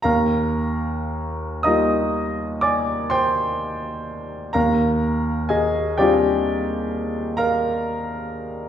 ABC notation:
X:1
M:9/8
L:1/8
Q:3/8=42
K:Cm
V:1 name="Grand piano"
[Bfb]3 [ebe']2 [dad'] [cgc']3 | [Bfb]2 [Aea] [Gdg]3 [Bfb]3 |]
V:2 name="Grand piano"
E,,3 [G,B,EF]6 | E,,3 [G,CDF]6 |]